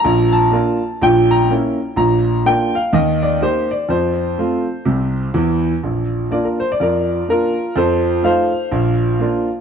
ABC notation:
X:1
M:4/4
L:1/16
Q:"Swing" 1/4=125
K:Bb
V:1 name="Grand piano"
b2 a6 g2 b2 z4 | b4 g2 f2 e2 d2 c2 d2 | c12- c2 z2 | z4 d B c d [Bd]4 [FB]4 |
[Ac]4 [cf]8- [cf]2 z2 |]
V:2 name="Grand piano"
[B,,,B,,]4 [B,DF]4 [B,,,B,,]4 [B,_D_F]4 | [B,,,B,,]4 [B,DF]4 [E,,E,]4 [B,EG]4 | [F,,F,]4 [A,CF]4 [C,,C,]4 [=E,,=E,]4 | [B,,,B,,]4 [B,DF]4 [F,,F,]4 [B,D]4 |
[F,,F,]4 [A,EF]4 [B,,,B,,]4 [B,DF]4 |]